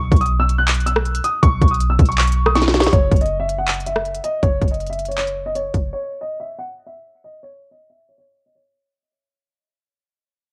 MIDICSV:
0, 0, Header, 1, 4, 480
1, 0, Start_track
1, 0, Tempo, 375000
1, 1829, Time_signature, 4, 2, 24, 8
1, 13475, End_track
2, 0, Start_track
2, 0, Title_t, "Grand piano"
2, 0, Program_c, 0, 0
2, 0, Note_on_c, 0, 85, 101
2, 248, Note_off_c, 0, 85, 0
2, 266, Note_on_c, 0, 87, 88
2, 455, Note_off_c, 0, 87, 0
2, 508, Note_on_c, 0, 88, 88
2, 695, Note_off_c, 0, 88, 0
2, 748, Note_on_c, 0, 90, 87
2, 1087, Note_off_c, 0, 90, 0
2, 1106, Note_on_c, 0, 88, 76
2, 1558, Note_off_c, 0, 88, 0
2, 1589, Note_on_c, 0, 87, 88
2, 1776, Note_off_c, 0, 87, 0
2, 1826, Note_on_c, 0, 85, 112
2, 2166, Note_off_c, 0, 85, 0
2, 2188, Note_on_c, 0, 87, 82
2, 2376, Note_off_c, 0, 87, 0
2, 2430, Note_on_c, 0, 88, 77
2, 2617, Note_off_c, 0, 88, 0
2, 2669, Note_on_c, 0, 85, 79
2, 2763, Note_off_c, 0, 85, 0
2, 2791, Note_on_c, 0, 85, 88
2, 3128, Note_off_c, 0, 85, 0
2, 3148, Note_on_c, 0, 87, 85
2, 3242, Note_off_c, 0, 87, 0
2, 3269, Note_on_c, 0, 85, 92
2, 3720, Note_off_c, 0, 85, 0
2, 3749, Note_on_c, 0, 73, 102
2, 4087, Note_off_c, 0, 73, 0
2, 4109, Note_on_c, 0, 75, 83
2, 4296, Note_off_c, 0, 75, 0
2, 4348, Note_on_c, 0, 76, 88
2, 4536, Note_off_c, 0, 76, 0
2, 4589, Note_on_c, 0, 78, 81
2, 4927, Note_off_c, 0, 78, 0
2, 4948, Note_on_c, 0, 76, 81
2, 5400, Note_off_c, 0, 76, 0
2, 5427, Note_on_c, 0, 75, 91
2, 5615, Note_off_c, 0, 75, 0
2, 5668, Note_on_c, 0, 73, 107
2, 6007, Note_off_c, 0, 73, 0
2, 6029, Note_on_c, 0, 75, 77
2, 6216, Note_off_c, 0, 75, 0
2, 6270, Note_on_c, 0, 76, 84
2, 6457, Note_off_c, 0, 76, 0
2, 6509, Note_on_c, 0, 73, 80
2, 6603, Note_off_c, 0, 73, 0
2, 6629, Note_on_c, 0, 73, 87
2, 6968, Note_off_c, 0, 73, 0
2, 6989, Note_on_c, 0, 75, 91
2, 7083, Note_off_c, 0, 75, 0
2, 7111, Note_on_c, 0, 73, 92
2, 7561, Note_off_c, 0, 73, 0
2, 7591, Note_on_c, 0, 73, 95
2, 7929, Note_off_c, 0, 73, 0
2, 7950, Note_on_c, 0, 75, 86
2, 8137, Note_off_c, 0, 75, 0
2, 8191, Note_on_c, 0, 76, 86
2, 8377, Note_off_c, 0, 76, 0
2, 8430, Note_on_c, 0, 78, 80
2, 8768, Note_off_c, 0, 78, 0
2, 8788, Note_on_c, 0, 76, 75
2, 9240, Note_off_c, 0, 76, 0
2, 9269, Note_on_c, 0, 75, 86
2, 9457, Note_off_c, 0, 75, 0
2, 9510, Note_on_c, 0, 73, 104
2, 9848, Note_off_c, 0, 73, 0
2, 9871, Note_on_c, 0, 75, 80
2, 10058, Note_off_c, 0, 75, 0
2, 10109, Note_on_c, 0, 76, 73
2, 10297, Note_off_c, 0, 76, 0
2, 10351, Note_on_c, 0, 73, 73
2, 10444, Note_off_c, 0, 73, 0
2, 10470, Note_on_c, 0, 73, 85
2, 10808, Note_off_c, 0, 73, 0
2, 10827, Note_on_c, 0, 75, 81
2, 10921, Note_off_c, 0, 75, 0
2, 10947, Note_on_c, 0, 73, 84
2, 11399, Note_off_c, 0, 73, 0
2, 13475, End_track
3, 0, Start_track
3, 0, Title_t, "808-style bass"
3, 0, Program_c, 1, 38
3, 0, Note_on_c, 1, 35, 113
3, 140, Note_off_c, 1, 35, 0
3, 148, Note_on_c, 1, 35, 105
3, 1537, Note_off_c, 1, 35, 0
3, 1829, Note_on_c, 1, 35, 110
3, 2059, Note_off_c, 1, 35, 0
3, 2067, Note_on_c, 1, 35, 109
3, 2529, Note_off_c, 1, 35, 0
3, 2548, Note_on_c, 1, 35, 109
3, 3700, Note_off_c, 1, 35, 0
3, 3749, Note_on_c, 1, 30, 109
3, 3979, Note_off_c, 1, 30, 0
3, 3988, Note_on_c, 1, 30, 107
3, 5377, Note_off_c, 1, 30, 0
3, 5669, Note_on_c, 1, 30, 112
3, 5899, Note_off_c, 1, 30, 0
3, 5909, Note_on_c, 1, 30, 102
3, 7298, Note_off_c, 1, 30, 0
3, 7350, Note_on_c, 1, 30, 104
3, 7580, Note_off_c, 1, 30, 0
3, 13475, End_track
4, 0, Start_track
4, 0, Title_t, "Drums"
4, 148, Note_on_c, 9, 36, 110
4, 149, Note_on_c, 9, 42, 54
4, 209, Note_off_c, 9, 42, 0
4, 209, Note_on_c, 9, 42, 56
4, 270, Note_off_c, 9, 42, 0
4, 270, Note_on_c, 9, 42, 52
4, 276, Note_off_c, 9, 36, 0
4, 329, Note_off_c, 9, 42, 0
4, 329, Note_on_c, 9, 42, 53
4, 457, Note_off_c, 9, 42, 0
4, 629, Note_on_c, 9, 42, 77
4, 757, Note_off_c, 9, 42, 0
4, 869, Note_on_c, 9, 42, 85
4, 870, Note_on_c, 9, 39, 119
4, 950, Note_off_c, 9, 42, 0
4, 950, Note_on_c, 9, 42, 64
4, 998, Note_off_c, 9, 39, 0
4, 1029, Note_off_c, 9, 42, 0
4, 1029, Note_on_c, 9, 42, 47
4, 1109, Note_off_c, 9, 42, 0
4, 1109, Note_on_c, 9, 42, 87
4, 1230, Note_on_c, 9, 37, 100
4, 1237, Note_off_c, 9, 42, 0
4, 1349, Note_on_c, 9, 42, 47
4, 1358, Note_off_c, 9, 37, 0
4, 1469, Note_off_c, 9, 42, 0
4, 1469, Note_on_c, 9, 42, 79
4, 1589, Note_off_c, 9, 42, 0
4, 1589, Note_on_c, 9, 42, 86
4, 1717, Note_off_c, 9, 42, 0
4, 1828, Note_on_c, 9, 42, 82
4, 1829, Note_on_c, 9, 36, 121
4, 1956, Note_off_c, 9, 42, 0
4, 1957, Note_off_c, 9, 36, 0
4, 2068, Note_on_c, 9, 36, 106
4, 2068, Note_on_c, 9, 42, 64
4, 2148, Note_off_c, 9, 42, 0
4, 2148, Note_on_c, 9, 42, 51
4, 2196, Note_off_c, 9, 36, 0
4, 2229, Note_off_c, 9, 42, 0
4, 2229, Note_on_c, 9, 42, 38
4, 2309, Note_off_c, 9, 42, 0
4, 2309, Note_on_c, 9, 42, 88
4, 2437, Note_off_c, 9, 42, 0
4, 2548, Note_on_c, 9, 36, 102
4, 2548, Note_on_c, 9, 42, 78
4, 2629, Note_off_c, 9, 42, 0
4, 2629, Note_on_c, 9, 42, 63
4, 2676, Note_off_c, 9, 36, 0
4, 2708, Note_off_c, 9, 42, 0
4, 2708, Note_on_c, 9, 42, 50
4, 2788, Note_off_c, 9, 42, 0
4, 2788, Note_on_c, 9, 42, 49
4, 2790, Note_on_c, 9, 39, 125
4, 2849, Note_off_c, 9, 42, 0
4, 2849, Note_on_c, 9, 42, 61
4, 2909, Note_off_c, 9, 42, 0
4, 2909, Note_on_c, 9, 42, 72
4, 2918, Note_off_c, 9, 39, 0
4, 2968, Note_off_c, 9, 42, 0
4, 2968, Note_on_c, 9, 42, 81
4, 3096, Note_off_c, 9, 42, 0
4, 3149, Note_on_c, 9, 37, 99
4, 3269, Note_on_c, 9, 38, 66
4, 3269, Note_on_c, 9, 42, 80
4, 3277, Note_off_c, 9, 37, 0
4, 3349, Note_off_c, 9, 38, 0
4, 3349, Note_off_c, 9, 42, 0
4, 3349, Note_on_c, 9, 38, 64
4, 3349, Note_on_c, 9, 42, 64
4, 3429, Note_off_c, 9, 38, 0
4, 3429, Note_off_c, 9, 42, 0
4, 3429, Note_on_c, 9, 38, 86
4, 3429, Note_on_c, 9, 42, 47
4, 3509, Note_off_c, 9, 38, 0
4, 3509, Note_off_c, 9, 42, 0
4, 3509, Note_on_c, 9, 38, 87
4, 3509, Note_on_c, 9, 42, 52
4, 3589, Note_off_c, 9, 38, 0
4, 3589, Note_on_c, 9, 38, 108
4, 3629, Note_off_c, 9, 42, 0
4, 3629, Note_on_c, 9, 42, 85
4, 3669, Note_off_c, 9, 38, 0
4, 3669, Note_on_c, 9, 38, 103
4, 3749, Note_off_c, 9, 42, 0
4, 3749, Note_on_c, 9, 36, 114
4, 3749, Note_on_c, 9, 42, 82
4, 3797, Note_off_c, 9, 38, 0
4, 3877, Note_off_c, 9, 36, 0
4, 3877, Note_off_c, 9, 42, 0
4, 3988, Note_on_c, 9, 36, 99
4, 3988, Note_on_c, 9, 42, 52
4, 4049, Note_off_c, 9, 42, 0
4, 4049, Note_on_c, 9, 42, 53
4, 4110, Note_off_c, 9, 42, 0
4, 4110, Note_on_c, 9, 42, 51
4, 4116, Note_off_c, 9, 36, 0
4, 4169, Note_off_c, 9, 42, 0
4, 4169, Note_on_c, 9, 42, 52
4, 4297, Note_off_c, 9, 42, 0
4, 4469, Note_on_c, 9, 42, 76
4, 4597, Note_off_c, 9, 42, 0
4, 4709, Note_on_c, 9, 42, 77
4, 4710, Note_on_c, 9, 39, 117
4, 4790, Note_off_c, 9, 42, 0
4, 4790, Note_on_c, 9, 42, 62
4, 4838, Note_off_c, 9, 39, 0
4, 4869, Note_off_c, 9, 42, 0
4, 4869, Note_on_c, 9, 42, 47
4, 4949, Note_off_c, 9, 42, 0
4, 4949, Note_on_c, 9, 42, 84
4, 5070, Note_on_c, 9, 37, 96
4, 5077, Note_off_c, 9, 42, 0
4, 5189, Note_on_c, 9, 42, 46
4, 5198, Note_off_c, 9, 37, 0
4, 5309, Note_off_c, 9, 42, 0
4, 5309, Note_on_c, 9, 42, 76
4, 5429, Note_off_c, 9, 42, 0
4, 5429, Note_on_c, 9, 42, 83
4, 5557, Note_off_c, 9, 42, 0
4, 5669, Note_on_c, 9, 42, 79
4, 5670, Note_on_c, 9, 36, 116
4, 5797, Note_off_c, 9, 42, 0
4, 5798, Note_off_c, 9, 36, 0
4, 5909, Note_on_c, 9, 36, 100
4, 5909, Note_on_c, 9, 42, 51
4, 5990, Note_off_c, 9, 42, 0
4, 5990, Note_on_c, 9, 42, 51
4, 6037, Note_off_c, 9, 36, 0
4, 6070, Note_off_c, 9, 42, 0
4, 6070, Note_on_c, 9, 42, 52
4, 6150, Note_off_c, 9, 42, 0
4, 6150, Note_on_c, 9, 42, 52
4, 6229, Note_off_c, 9, 42, 0
4, 6229, Note_on_c, 9, 42, 51
4, 6309, Note_off_c, 9, 42, 0
4, 6309, Note_on_c, 9, 42, 49
4, 6389, Note_off_c, 9, 42, 0
4, 6389, Note_on_c, 9, 42, 78
4, 6469, Note_off_c, 9, 42, 0
4, 6469, Note_on_c, 9, 42, 62
4, 6549, Note_off_c, 9, 42, 0
4, 6549, Note_on_c, 9, 42, 47
4, 6629, Note_off_c, 9, 42, 0
4, 6629, Note_on_c, 9, 42, 65
4, 6630, Note_on_c, 9, 39, 111
4, 6749, Note_off_c, 9, 42, 0
4, 6749, Note_on_c, 9, 42, 67
4, 6758, Note_off_c, 9, 39, 0
4, 6877, Note_off_c, 9, 42, 0
4, 7109, Note_on_c, 9, 42, 74
4, 7237, Note_off_c, 9, 42, 0
4, 7349, Note_on_c, 9, 42, 84
4, 7350, Note_on_c, 9, 36, 98
4, 7477, Note_off_c, 9, 42, 0
4, 7478, Note_off_c, 9, 36, 0
4, 13475, End_track
0, 0, End_of_file